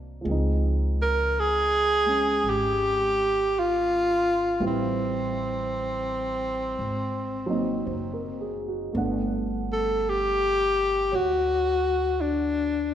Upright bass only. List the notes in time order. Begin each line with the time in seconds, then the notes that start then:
Already playing: C2
0.25 C#2
2.44 G#1
4.60 A1
6.79 G#1
7.87 F#1
8.95 G1
11.13 D2